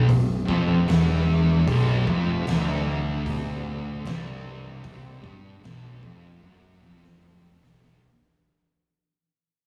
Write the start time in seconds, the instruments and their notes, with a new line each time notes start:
0.09 fingered electric bass B0, distorted electric guitar B1, kick, open hi-hat
0.48 fingered electric bass F1, distorted electric guitar F2, kick
0.88 fingered electric bass E1, distorted electric guitar E2, snare, open hi-hat
1.67 fingered electric bass B0, distorted electric guitar B1, kick, open hi-hat
2.07 fingered electric bass F1, distorted electric guitar F2, kick
2.47 fingered electric bass D1, distorted electric guitar D2, snare, open hi-hat
3.26 kick, open hi-hat
4.04 fingered electric bass C1, distorted electric guitar C2, snare, open hi-hat
4.84 kick, open hi-hat
5.23 fingered electric bass G1, distorted electric guitar G2, kick
5.63 fingered electric bass B0, distorted electric guitar B1, snare, open hi-hat
6.02 fingered electric bass F1, distorted electric guitar F2, kick
6.42 fingered electric bass F#1, distorted electric guitar F#2, high tom
6.82 fingered electric bass F1, distorted electric guitar F2, kick
7.04 snare
7.23 mid tom
7.62 fingered electric bass B0, distorted electric guitar B1, snare
7.83 snare